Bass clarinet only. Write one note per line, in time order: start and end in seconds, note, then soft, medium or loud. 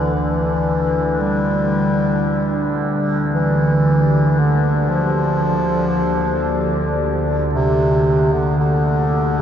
0.00 0.14 E3 medium
0.15 1.22 E3 medium
1.20 2.79 G3 medium
3.35 4.41 E3 medium
4.39 4.91 D3 medium
4.89 7.00 F3 medium
7.53 8.34 C3 medium
8.33 8.58 D3 medium
8.59 9.41 D3 medium